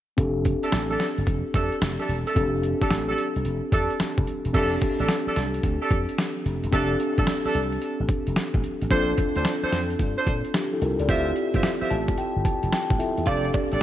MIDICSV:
0, 0, Header, 1, 8, 480
1, 0, Start_track
1, 0, Key_signature, -1, "major"
1, 0, Tempo, 545455
1, 158, Time_signature, 4, 2, 24, 8
1, 12170, End_track
2, 0, Start_track
2, 0, Title_t, "Horn section"
2, 0, Program_c, 0, 61
2, 553, Note_on_c, 0, 62, 70
2, 555, Note_on_c, 0, 67, 67
2, 559, Note_on_c, 0, 69, 81
2, 694, Note_off_c, 0, 62, 0
2, 695, Note_off_c, 0, 67, 0
2, 697, Note_off_c, 0, 69, 0
2, 793, Note_on_c, 0, 62, 76
2, 796, Note_on_c, 0, 67, 67
2, 798, Note_on_c, 0, 69, 82
2, 934, Note_off_c, 0, 62, 0
2, 935, Note_off_c, 0, 67, 0
2, 936, Note_off_c, 0, 69, 0
2, 1354, Note_on_c, 0, 62, 74
2, 1356, Note_on_c, 0, 67, 67
2, 1360, Note_on_c, 0, 69, 85
2, 1544, Note_off_c, 0, 62, 0
2, 1545, Note_off_c, 0, 67, 0
2, 1547, Note_off_c, 0, 69, 0
2, 1753, Note_on_c, 0, 62, 73
2, 1756, Note_on_c, 0, 67, 65
2, 1758, Note_on_c, 0, 69, 77
2, 1894, Note_off_c, 0, 62, 0
2, 1895, Note_off_c, 0, 67, 0
2, 1896, Note_off_c, 0, 69, 0
2, 1993, Note_on_c, 0, 62, 74
2, 1996, Note_on_c, 0, 67, 71
2, 1999, Note_on_c, 0, 69, 82
2, 2134, Note_off_c, 0, 62, 0
2, 2135, Note_off_c, 0, 67, 0
2, 2137, Note_off_c, 0, 69, 0
2, 2471, Note_on_c, 0, 62, 76
2, 2474, Note_on_c, 0, 67, 71
2, 2477, Note_on_c, 0, 69, 83
2, 2613, Note_off_c, 0, 62, 0
2, 2614, Note_off_c, 0, 67, 0
2, 2616, Note_off_c, 0, 69, 0
2, 2712, Note_on_c, 0, 62, 79
2, 2715, Note_on_c, 0, 67, 74
2, 2716, Note_on_c, 0, 69, 91
2, 2853, Note_off_c, 0, 62, 0
2, 2855, Note_off_c, 0, 67, 0
2, 2855, Note_off_c, 0, 69, 0
2, 3274, Note_on_c, 0, 62, 80
2, 3277, Note_on_c, 0, 67, 70
2, 3279, Note_on_c, 0, 69, 88
2, 3464, Note_off_c, 0, 62, 0
2, 3465, Note_off_c, 0, 67, 0
2, 3466, Note_off_c, 0, 69, 0
2, 3995, Note_on_c, 0, 62, 98
2, 3998, Note_on_c, 0, 67, 88
2, 3999, Note_on_c, 0, 69, 104
2, 4184, Note_off_c, 0, 62, 0
2, 4186, Note_off_c, 0, 67, 0
2, 4186, Note_off_c, 0, 69, 0
2, 4394, Note_on_c, 0, 62, 78
2, 4397, Note_on_c, 0, 67, 70
2, 4398, Note_on_c, 0, 69, 84
2, 4534, Note_off_c, 0, 62, 0
2, 4536, Note_off_c, 0, 67, 0
2, 4536, Note_off_c, 0, 69, 0
2, 4633, Note_on_c, 0, 62, 81
2, 4636, Note_on_c, 0, 67, 75
2, 4637, Note_on_c, 0, 69, 85
2, 4774, Note_off_c, 0, 62, 0
2, 4775, Note_off_c, 0, 67, 0
2, 4776, Note_off_c, 0, 69, 0
2, 5112, Note_on_c, 0, 62, 77
2, 5113, Note_on_c, 0, 67, 73
2, 5118, Note_on_c, 0, 69, 83
2, 5253, Note_off_c, 0, 62, 0
2, 5254, Note_off_c, 0, 67, 0
2, 5256, Note_off_c, 0, 69, 0
2, 5916, Note_on_c, 0, 62, 98
2, 5918, Note_on_c, 0, 67, 87
2, 5922, Note_on_c, 0, 69, 109
2, 6105, Note_off_c, 0, 62, 0
2, 6106, Note_off_c, 0, 67, 0
2, 6108, Note_off_c, 0, 69, 0
2, 6316, Note_on_c, 0, 62, 75
2, 6317, Note_on_c, 0, 67, 70
2, 6320, Note_on_c, 0, 69, 85
2, 6455, Note_off_c, 0, 62, 0
2, 6456, Note_off_c, 0, 67, 0
2, 6457, Note_off_c, 0, 69, 0
2, 6556, Note_on_c, 0, 62, 77
2, 6558, Note_on_c, 0, 67, 73
2, 6561, Note_on_c, 0, 69, 88
2, 6695, Note_off_c, 0, 62, 0
2, 6696, Note_off_c, 0, 67, 0
2, 6698, Note_off_c, 0, 69, 0
2, 7837, Note_on_c, 0, 62, 91
2, 7840, Note_on_c, 0, 69, 85
2, 7842, Note_on_c, 0, 72, 108
2, 8025, Note_off_c, 0, 62, 0
2, 8026, Note_off_c, 0, 69, 0
2, 8028, Note_off_c, 0, 72, 0
2, 8232, Note_on_c, 0, 62, 76
2, 8235, Note_on_c, 0, 69, 66
2, 8238, Note_on_c, 0, 72, 90
2, 8373, Note_off_c, 0, 62, 0
2, 8375, Note_off_c, 0, 69, 0
2, 8376, Note_off_c, 0, 72, 0
2, 8473, Note_on_c, 0, 62, 80
2, 8476, Note_on_c, 0, 69, 74
2, 8478, Note_on_c, 0, 72, 89
2, 8614, Note_off_c, 0, 62, 0
2, 8615, Note_off_c, 0, 69, 0
2, 8616, Note_off_c, 0, 72, 0
2, 8953, Note_on_c, 0, 62, 75
2, 8955, Note_on_c, 0, 69, 71
2, 8959, Note_on_c, 0, 72, 86
2, 9094, Note_off_c, 0, 62, 0
2, 9095, Note_off_c, 0, 69, 0
2, 9097, Note_off_c, 0, 72, 0
2, 9753, Note_on_c, 0, 65, 93
2, 9755, Note_on_c, 0, 67, 88
2, 9757, Note_on_c, 0, 72, 87
2, 9759, Note_on_c, 0, 76, 111
2, 9943, Note_off_c, 0, 65, 0
2, 9944, Note_off_c, 0, 67, 0
2, 9945, Note_off_c, 0, 72, 0
2, 9946, Note_off_c, 0, 76, 0
2, 10153, Note_on_c, 0, 65, 74
2, 10155, Note_on_c, 0, 67, 72
2, 10157, Note_on_c, 0, 72, 71
2, 10159, Note_on_c, 0, 76, 83
2, 10294, Note_off_c, 0, 65, 0
2, 10295, Note_off_c, 0, 67, 0
2, 10296, Note_off_c, 0, 72, 0
2, 10297, Note_off_c, 0, 76, 0
2, 10391, Note_on_c, 0, 65, 81
2, 10393, Note_on_c, 0, 67, 73
2, 10395, Note_on_c, 0, 72, 70
2, 10396, Note_on_c, 0, 76, 88
2, 10533, Note_off_c, 0, 65, 0
2, 10534, Note_off_c, 0, 67, 0
2, 10535, Note_off_c, 0, 72, 0
2, 10535, Note_off_c, 0, 76, 0
2, 11674, Note_on_c, 0, 67, 101
2, 11676, Note_on_c, 0, 69, 92
2, 11679, Note_on_c, 0, 74, 104
2, 11864, Note_off_c, 0, 67, 0
2, 11865, Note_off_c, 0, 69, 0
2, 11866, Note_off_c, 0, 74, 0
2, 12073, Note_on_c, 0, 67, 77
2, 12075, Note_on_c, 0, 69, 71
2, 12078, Note_on_c, 0, 74, 81
2, 12170, Note_off_c, 0, 67, 0
2, 12170, Note_off_c, 0, 69, 0
2, 12170, Note_off_c, 0, 74, 0
2, 12170, End_track
3, 0, Start_track
3, 0, Title_t, "Tine electric piano"
3, 0, Program_c, 1, 4
3, 148, Note_on_c, 1, 60, 77
3, 155, Note_on_c, 1, 62, 67
3, 161, Note_on_c, 1, 67, 64
3, 168, Note_on_c, 1, 69, 78
3, 328, Control_c, 1, 64, 127
3, 2037, Note_off_c, 1, 60, 0
3, 2041, Note_off_c, 1, 62, 0
3, 2044, Note_off_c, 1, 67, 0
3, 2047, Note_off_c, 1, 69, 0
3, 2067, Note_on_c, 1, 60, 73
3, 2073, Note_on_c, 1, 62, 69
3, 2080, Note_on_c, 1, 67, 69
3, 2087, Note_on_c, 1, 69, 79
3, 3957, Note_off_c, 1, 60, 0
3, 3960, Note_off_c, 1, 62, 0
3, 3964, Note_off_c, 1, 67, 0
3, 3967, Note_off_c, 1, 69, 0
3, 3988, Note_on_c, 1, 60, 75
3, 3995, Note_on_c, 1, 62, 67
3, 4002, Note_on_c, 1, 67, 64
3, 4007, Control_c, 1, 64, 0
3, 4009, Note_on_c, 1, 69, 80
3, 4170, Control_c, 1, 64, 127
3, 5877, Note_off_c, 1, 60, 0
3, 5881, Note_off_c, 1, 62, 0
3, 5884, Note_off_c, 1, 67, 0
3, 5888, Note_off_c, 1, 69, 0
3, 5908, Note_on_c, 1, 60, 81
3, 5915, Note_on_c, 1, 62, 70
3, 5923, Note_on_c, 1, 67, 64
3, 5929, Note_on_c, 1, 69, 84
3, 7798, Note_off_c, 1, 60, 0
3, 7801, Note_off_c, 1, 62, 0
3, 7805, Note_off_c, 1, 67, 0
3, 7808, Note_off_c, 1, 69, 0
3, 7830, Note_on_c, 1, 60, 75
3, 7836, Note_on_c, 1, 62, 69
3, 7843, Note_on_c, 1, 65, 68
3, 7850, Control_c, 1, 64, 0
3, 7851, Note_on_c, 1, 69, 83
3, 8012, Control_c, 1, 64, 127
3, 9248, Note_off_c, 1, 62, 0
3, 9251, Note_off_c, 1, 65, 0
3, 9256, Note_off_c, 1, 69, 0
3, 9279, Note_on_c, 1, 67, 61
3, 9285, Note_on_c, 1, 62, 50
3, 9429, Note_off_c, 1, 67, 0
3, 9431, Note_off_c, 1, 62, 0
3, 9438, Note_on_c, 1, 69, 67
3, 9444, Note_on_c, 1, 64, 56
3, 9515, Note_off_c, 1, 69, 0
3, 9518, Note_off_c, 1, 64, 0
3, 9521, Note_on_c, 1, 70, 63
3, 9526, Note_on_c, 1, 65, 53
3, 9669, Note_off_c, 1, 70, 0
3, 9672, Note_off_c, 1, 65, 0
3, 9680, Note_on_c, 1, 74, 70
3, 9685, Note_on_c, 1, 69, 60
3, 9718, Note_off_c, 1, 60, 0
3, 9750, Note_on_c, 1, 60, 72
3, 9758, Note_on_c, 1, 64, 67
3, 9764, Note_on_c, 1, 65, 71
3, 9769, Control_c, 1, 64, 0
3, 9771, Note_on_c, 1, 67, 85
3, 9906, Note_off_c, 1, 74, 0
3, 9908, Note_off_c, 1, 69, 0
3, 9929, Control_c, 1, 64, 127
3, 10476, Note_on_c, 1, 81, 63
3, 10700, Note_off_c, 1, 81, 0
3, 10719, Note_on_c, 1, 79, 69
3, 10941, Note_off_c, 1, 79, 0
3, 10955, Note_on_c, 1, 81, 71
3, 11179, Note_off_c, 1, 81, 0
3, 11195, Note_on_c, 1, 79, 66
3, 11400, Note_off_c, 1, 60, 0
3, 11404, Note_off_c, 1, 64, 0
3, 11407, Note_off_c, 1, 65, 0
3, 11411, Note_off_c, 1, 67, 0
3, 11419, Note_off_c, 1, 79, 0
3, 11429, Note_on_c, 1, 60, 52
3, 11432, Note_on_c, 1, 64, 49
3, 11433, Note_on_c, 1, 76, 60
3, 11435, Note_on_c, 1, 65, 49
3, 11439, Note_on_c, 1, 69, 60
3, 11654, Note_off_c, 1, 60, 0
3, 11658, Note_off_c, 1, 76, 0
3, 11664, Note_on_c, 1, 60, 71
3, 11671, Note_on_c, 1, 62, 67
3, 11675, Note_off_c, 1, 64, 0
3, 11675, Note_off_c, 1, 69, 0
3, 11676, Note_off_c, 1, 65, 0
3, 11679, Note_on_c, 1, 67, 67
3, 11686, Note_on_c, 1, 69, 82
3, 11689, Control_c, 1, 64, 0
3, 11839, Control_c, 1, 64, 127
3, 12170, Note_off_c, 1, 60, 0
3, 12170, Note_off_c, 1, 62, 0
3, 12170, Note_off_c, 1, 67, 0
3, 12170, Note_off_c, 1, 69, 0
3, 12170, End_track
4, 0, Start_track
4, 0, Title_t, "Clean electric guitar"
4, 0, Program_c, 2, 27
4, 11676, Note_on_c, 2, 65, 86
4, 11801, Note_off_c, 2, 65, 0
4, 11917, Note_on_c, 2, 62, 70
4, 12041, Note_off_c, 2, 62, 0
4, 12170, End_track
5, 0, Start_track
5, 0, Title_t, "Slap bass"
5, 0, Program_c, 3, 36
5, 159, Note_on_c, 3, 29, 97
5, 479, Note_off_c, 3, 29, 0
5, 642, Note_on_c, 3, 33, 88
5, 833, Note_off_c, 3, 33, 0
5, 1039, Note_on_c, 3, 31, 85
5, 1103, Note_off_c, 3, 31, 0
5, 1119, Note_on_c, 3, 29, 81
5, 1246, Note_off_c, 3, 29, 0
5, 1357, Note_on_c, 3, 41, 87
5, 1485, Note_off_c, 3, 41, 0
5, 1598, Note_on_c, 3, 29, 96
5, 1725, Note_off_c, 3, 29, 0
5, 1837, Note_on_c, 3, 28, 89
5, 1965, Note_off_c, 3, 28, 0
5, 2080, Note_on_c, 3, 29, 100
5, 2399, Note_off_c, 3, 29, 0
5, 2559, Note_on_c, 3, 33, 93
5, 2752, Note_off_c, 3, 33, 0
5, 2957, Note_on_c, 3, 36, 79
5, 3023, Note_off_c, 3, 36, 0
5, 3039, Note_on_c, 3, 29, 85
5, 3166, Note_off_c, 3, 29, 0
5, 3278, Note_on_c, 3, 41, 92
5, 3405, Note_off_c, 3, 41, 0
5, 3679, Note_on_c, 3, 29, 83
5, 3743, Note_off_c, 3, 29, 0
5, 3918, Note_on_c, 3, 28, 84
5, 3983, Note_off_c, 3, 28, 0
5, 3999, Note_on_c, 3, 29, 99
5, 4192, Note_off_c, 3, 29, 0
5, 4399, Note_on_c, 3, 33, 85
5, 4463, Note_off_c, 3, 33, 0
5, 4721, Note_on_c, 3, 36, 86
5, 4913, Note_off_c, 3, 36, 0
5, 4960, Note_on_c, 3, 38, 94
5, 5086, Note_off_c, 3, 38, 0
5, 5199, Note_on_c, 3, 41, 88
5, 5326, Note_off_c, 3, 41, 0
5, 5681, Note_on_c, 3, 29, 85
5, 5807, Note_off_c, 3, 29, 0
5, 5840, Note_on_c, 3, 28, 81
5, 5904, Note_off_c, 3, 28, 0
5, 5919, Note_on_c, 3, 29, 100
5, 6112, Note_off_c, 3, 29, 0
5, 6321, Note_on_c, 3, 33, 96
5, 6385, Note_off_c, 3, 33, 0
5, 6641, Note_on_c, 3, 36, 97
5, 6833, Note_off_c, 3, 36, 0
5, 7040, Note_on_c, 3, 33, 78
5, 7104, Note_off_c, 3, 33, 0
5, 7280, Note_on_c, 3, 29, 87
5, 7344, Note_off_c, 3, 29, 0
5, 7518, Note_on_c, 3, 33, 84
5, 7583, Note_off_c, 3, 33, 0
5, 7761, Note_on_c, 3, 33, 79
5, 7824, Note_off_c, 3, 33, 0
5, 7838, Note_on_c, 3, 34, 95
5, 8031, Note_off_c, 3, 34, 0
5, 8238, Note_on_c, 3, 38, 85
5, 8303, Note_off_c, 3, 38, 0
5, 8557, Note_on_c, 3, 41, 87
5, 8751, Note_off_c, 3, 41, 0
5, 8796, Note_on_c, 3, 43, 94
5, 8924, Note_off_c, 3, 43, 0
5, 9037, Note_on_c, 3, 46, 94
5, 9164, Note_off_c, 3, 46, 0
5, 9518, Note_on_c, 3, 36, 90
5, 9645, Note_off_c, 3, 36, 0
5, 9676, Note_on_c, 3, 37, 86
5, 9742, Note_off_c, 3, 37, 0
5, 9758, Note_on_c, 3, 38, 112
5, 9951, Note_off_c, 3, 38, 0
5, 10159, Note_on_c, 3, 43, 90
5, 10223, Note_off_c, 3, 43, 0
5, 10480, Note_on_c, 3, 33, 95
5, 10672, Note_off_c, 3, 33, 0
5, 10879, Note_on_c, 3, 31, 78
5, 10943, Note_off_c, 3, 31, 0
5, 11117, Note_on_c, 3, 29, 94
5, 11182, Note_off_c, 3, 29, 0
5, 11357, Note_on_c, 3, 33, 80
5, 11422, Note_off_c, 3, 33, 0
5, 11598, Note_on_c, 3, 40, 89
5, 11663, Note_off_c, 3, 40, 0
5, 11678, Note_on_c, 3, 29, 99
5, 11871, Note_off_c, 3, 29, 0
5, 12078, Note_on_c, 3, 33, 81
5, 12143, Note_off_c, 3, 33, 0
5, 12170, End_track
6, 0, Start_track
6, 0, Title_t, "Muted clean electric guitar strokes"
6, 11836, Note_on_c, 9, 29, 43
6, 11924, Note_off_c, 9, 29, 0
6, 12170, End_track
7, 0, Start_track
7, 0, Title_t, "Muted slap bass strokes"
7, 3523, Note_on_c, 9, 29, 46
7, 3611, Note_off_c, 9, 29, 0
7, 4637, Note_on_c, 9, 29, 46
7, 4725, Note_off_c, 9, 29, 0
7, 6561, Note_on_c, 9, 29, 48
7, 6649, Note_off_c, 9, 29, 0
7, 8477, Note_on_c, 9, 29, 45
7, 8565, Note_off_c, 9, 29, 0
7, 10399, Note_on_c, 9, 29, 46
7, 10487, Note_off_c, 9, 29, 0
7, 12170, End_track
8, 0, Start_track
8, 0, Title_t, "Drums"
8, 157, Note_on_c, 9, 36, 93
8, 157, Note_on_c, 9, 42, 70
8, 245, Note_off_c, 9, 36, 0
8, 245, Note_off_c, 9, 42, 0
8, 395, Note_on_c, 9, 42, 69
8, 399, Note_on_c, 9, 36, 91
8, 483, Note_off_c, 9, 42, 0
8, 487, Note_off_c, 9, 36, 0
8, 555, Note_on_c, 9, 42, 46
8, 636, Note_on_c, 9, 38, 103
8, 639, Note_off_c, 9, 42, 0
8, 639, Note_on_c, 9, 42, 68
8, 724, Note_off_c, 9, 38, 0
8, 727, Note_off_c, 9, 42, 0
8, 878, Note_on_c, 9, 42, 59
8, 879, Note_on_c, 9, 38, 71
8, 966, Note_off_c, 9, 42, 0
8, 967, Note_off_c, 9, 38, 0
8, 1036, Note_on_c, 9, 42, 44
8, 1116, Note_off_c, 9, 42, 0
8, 1116, Note_on_c, 9, 42, 65
8, 1117, Note_on_c, 9, 36, 79
8, 1204, Note_off_c, 9, 42, 0
8, 1205, Note_off_c, 9, 36, 0
8, 1357, Note_on_c, 9, 36, 92
8, 1357, Note_on_c, 9, 42, 75
8, 1445, Note_off_c, 9, 36, 0
8, 1445, Note_off_c, 9, 42, 0
8, 1515, Note_on_c, 9, 42, 43
8, 1599, Note_off_c, 9, 42, 0
8, 1599, Note_on_c, 9, 42, 68
8, 1600, Note_on_c, 9, 38, 104
8, 1687, Note_off_c, 9, 42, 0
8, 1688, Note_off_c, 9, 38, 0
8, 1842, Note_on_c, 9, 42, 61
8, 1930, Note_off_c, 9, 42, 0
8, 1997, Note_on_c, 9, 42, 52
8, 2077, Note_on_c, 9, 36, 94
8, 2078, Note_off_c, 9, 42, 0
8, 2078, Note_on_c, 9, 42, 74
8, 2165, Note_off_c, 9, 36, 0
8, 2166, Note_off_c, 9, 42, 0
8, 2317, Note_on_c, 9, 42, 72
8, 2405, Note_off_c, 9, 42, 0
8, 2475, Note_on_c, 9, 42, 49
8, 2478, Note_on_c, 9, 36, 92
8, 2556, Note_on_c, 9, 38, 107
8, 2559, Note_off_c, 9, 42, 0
8, 2559, Note_on_c, 9, 42, 66
8, 2566, Note_off_c, 9, 36, 0
8, 2644, Note_off_c, 9, 38, 0
8, 2647, Note_off_c, 9, 42, 0
8, 2799, Note_on_c, 9, 42, 61
8, 2887, Note_off_c, 9, 42, 0
8, 2956, Note_on_c, 9, 42, 44
8, 3035, Note_off_c, 9, 42, 0
8, 3035, Note_on_c, 9, 42, 65
8, 3123, Note_off_c, 9, 42, 0
8, 3275, Note_on_c, 9, 42, 75
8, 3276, Note_on_c, 9, 36, 104
8, 3363, Note_off_c, 9, 42, 0
8, 3364, Note_off_c, 9, 36, 0
8, 3434, Note_on_c, 9, 42, 42
8, 3518, Note_off_c, 9, 42, 0
8, 3518, Note_on_c, 9, 42, 73
8, 3519, Note_on_c, 9, 38, 98
8, 3606, Note_off_c, 9, 42, 0
8, 3607, Note_off_c, 9, 38, 0
8, 3676, Note_on_c, 9, 36, 96
8, 3759, Note_on_c, 9, 42, 67
8, 3764, Note_off_c, 9, 36, 0
8, 3847, Note_off_c, 9, 42, 0
8, 3915, Note_on_c, 9, 42, 49
8, 3997, Note_off_c, 9, 42, 0
8, 3997, Note_on_c, 9, 36, 100
8, 3997, Note_on_c, 9, 42, 77
8, 3997, Note_on_c, 9, 49, 80
8, 4085, Note_off_c, 9, 36, 0
8, 4085, Note_off_c, 9, 42, 0
8, 4085, Note_off_c, 9, 49, 0
8, 4236, Note_on_c, 9, 42, 71
8, 4239, Note_on_c, 9, 36, 90
8, 4324, Note_off_c, 9, 42, 0
8, 4327, Note_off_c, 9, 36, 0
8, 4394, Note_on_c, 9, 42, 46
8, 4475, Note_on_c, 9, 38, 110
8, 4477, Note_off_c, 9, 42, 0
8, 4477, Note_on_c, 9, 42, 69
8, 4563, Note_off_c, 9, 38, 0
8, 4565, Note_off_c, 9, 42, 0
8, 4719, Note_on_c, 9, 42, 65
8, 4720, Note_on_c, 9, 38, 68
8, 4807, Note_off_c, 9, 42, 0
8, 4808, Note_off_c, 9, 38, 0
8, 4877, Note_on_c, 9, 42, 45
8, 4958, Note_on_c, 9, 36, 83
8, 4959, Note_off_c, 9, 42, 0
8, 4959, Note_on_c, 9, 42, 65
8, 5046, Note_off_c, 9, 36, 0
8, 5047, Note_off_c, 9, 42, 0
8, 5198, Note_on_c, 9, 36, 102
8, 5199, Note_on_c, 9, 42, 68
8, 5286, Note_off_c, 9, 36, 0
8, 5287, Note_off_c, 9, 42, 0
8, 5357, Note_on_c, 9, 42, 45
8, 5441, Note_off_c, 9, 42, 0
8, 5441, Note_on_c, 9, 42, 67
8, 5442, Note_on_c, 9, 38, 108
8, 5529, Note_off_c, 9, 42, 0
8, 5530, Note_off_c, 9, 38, 0
8, 5683, Note_on_c, 9, 42, 71
8, 5771, Note_off_c, 9, 42, 0
8, 5839, Note_on_c, 9, 42, 54
8, 5919, Note_off_c, 9, 42, 0
8, 5919, Note_on_c, 9, 36, 97
8, 5919, Note_on_c, 9, 42, 80
8, 6007, Note_off_c, 9, 36, 0
8, 6007, Note_off_c, 9, 42, 0
8, 6158, Note_on_c, 9, 42, 75
8, 6246, Note_off_c, 9, 42, 0
8, 6315, Note_on_c, 9, 42, 47
8, 6319, Note_on_c, 9, 36, 92
8, 6397, Note_on_c, 9, 38, 104
8, 6399, Note_off_c, 9, 42, 0
8, 6399, Note_on_c, 9, 42, 76
8, 6407, Note_off_c, 9, 36, 0
8, 6485, Note_off_c, 9, 38, 0
8, 6487, Note_off_c, 9, 42, 0
8, 6638, Note_on_c, 9, 42, 68
8, 6726, Note_off_c, 9, 42, 0
8, 6796, Note_on_c, 9, 42, 43
8, 6878, Note_off_c, 9, 42, 0
8, 6878, Note_on_c, 9, 42, 68
8, 6966, Note_off_c, 9, 42, 0
8, 7117, Note_on_c, 9, 36, 98
8, 7117, Note_on_c, 9, 42, 74
8, 7205, Note_off_c, 9, 36, 0
8, 7205, Note_off_c, 9, 42, 0
8, 7275, Note_on_c, 9, 42, 45
8, 7358, Note_off_c, 9, 42, 0
8, 7358, Note_on_c, 9, 42, 77
8, 7359, Note_on_c, 9, 38, 111
8, 7446, Note_off_c, 9, 42, 0
8, 7447, Note_off_c, 9, 38, 0
8, 7517, Note_on_c, 9, 36, 94
8, 7600, Note_on_c, 9, 42, 68
8, 7605, Note_off_c, 9, 36, 0
8, 7688, Note_off_c, 9, 42, 0
8, 7757, Note_on_c, 9, 42, 52
8, 7837, Note_on_c, 9, 36, 105
8, 7838, Note_off_c, 9, 42, 0
8, 7838, Note_on_c, 9, 42, 70
8, 7925, Note_off_c, 9, 36, 0
8, 7926, Note_off_c, 9, 42, 0
8, 8074, Note_on_c, 9, 42, 70
8, 8079, Note_on_c, 9, 36, 94
8, 8162, Note_off_c, 9, 42, 0
8, 8167, Note_off_c, 9, 36, 0
8, 8232, Note_on_c, 9, 42, 48
8, 8314, Note_on_c, 9, 38, 105
8, 8316, Note_off_c, 9, 42, 0
8, 8316, Note_on_c, 9, 42, 73
8, 8402, Note_off_c, 9, 38, 0
8, 8404, Note_off_c, 9, 42, 0
8, 8557, Note_on_c, 9, 42, 64
8, 8558, Note_on_c, 9, 38, 68
8, 8645, Note_off_c, 9, 42, 0
8, 8646, Note_off_c, 9, 38, 0
8, 8713, Note_on_c, 9, 42, 42
8, 8793, Note_off_c, 9, 42, 0
8, 8793, Note_on_c, 9, 42, 70
8, 8795, Note_on_c, 9, 36, 83
8, 8881, Note_off_c, 9, 42, 0
8, 8883, Note_off_c, 9, 36, 0
8, 9035, Note_on_c, 9, 36, 95
8, 9035, Note_on_c, 9, 42, 76
8, 9123, Note_off_c, 9, 36, 0
8, 9123, Note_off_c, 9, 42, 0
8, 9192, Note_on_c, 9, 42, 45
8, 9276, Note_off_c, 9, 42, 0
8, 9276, Note_on_c, 9, 42, 78
8, 9277, Note_on_c, 9, 38, 104
8, 9364, Note_off_c, 9, 42, 0
8, 9365, Note_off_c, 9, 38, 0
8, 9519, Note_on_c, 9, 42, 69
8, 9607, Note_off_c, 9, 42, 0
8, 9675, Note_on_c, 9, 42, 49
8, 9757, Note_off_c, 9, 42, 0
8, 9757, Note_on_c, 9, 36, 106
8, 9757, Note_on_c, 9, 42, 72
8, 9845, Note_off_c, 9, 36, 0
8, 9845, Note_off_c, 9, 42, 0
8, 9995, Note_on_c, 9, 42, 68
8, 10083, Note_off_c, 9, 42, 0
8, 10153, Note_on_c, 9, 42, 46
8, 10158, Note_on_c, 9, 36, 92
8, 10236, Note_on_c, 9, 38, 107
8, 10238, Note_off_c, 9, 42, 0
8, 10238, Note_on_c, 9, 42, 74
8, 10246, Note_off_c, 9, 36, 0
8, 10324, Note_off_c, 9, 38, 0
8, 10326, Note_off_c, 9, 42, 0
8, 10476, Note_on_c, 9, 42, 67
8, 10564, Note_off_c, 9, 42, 0
8, 10633, Note_on_c, 9, 36, 85
8, 10634, Note_on_c, 9, 42, 42
8, 10714, Note_off_c, 9, 42, 0
8, 10714, Note_on_c, 9, 42, 66
8, 10721, Note_off_c, 9, 36, 0
8, 10802, Note_off_c, 9, 42, 0
8, 10956, Note_on_c, 9, 36, 95
8, 10956, Note_on_c, 9, 42, 73
8, 11044, Note_off_c, 9, 36, 0
8, 11044, Note_off_c, 9, 42, 0
8, 11113, Note_on_c, 9, 42, 44
8, 11197, Note_off_c, 9, 42, 0
8, 11197, Note_on_c, 9, 42, 72
8, 11198, Note_on_c, 9, 38, 102
8, 11285, Note_off_c, 9, 42, 0
8, 11286, Note_off_c, 9, 38, 0
8, 11356, Note_on_c, 9, 36, 102
8, 11439, Note_on_c, 9, 42, 66
8, 11444, Note_off_c, 9, 36, 0
8, 11527, Note_off_c, 9, 42, 0
8, 11593, Note_on_c, 9, 42, 50
8, 11675, Note_off_c, 9, 42, 0
8, 11675, Note_on_c, 9, 42, 75
8, 11676, Note_on_c, 9, 36, 108
8, 11763, Note_off_c, 9, 42, 0
8, 11764, Note_off_c, 9, 36, 0
8, 11912, Note_on_c, 9, 42, 74
8, 11917, Note_on_c, 9, 36, 98
8, 12000, Note_off_c, 9, 42, 0
8, 12005, Note_off_c, 9, 36, 0
8, 12070, Note_on_c, 9, 42, 45
8, 12158, Note_off_c, 9, 42, 0
8, 12170, End_track
0, 0, End_of_file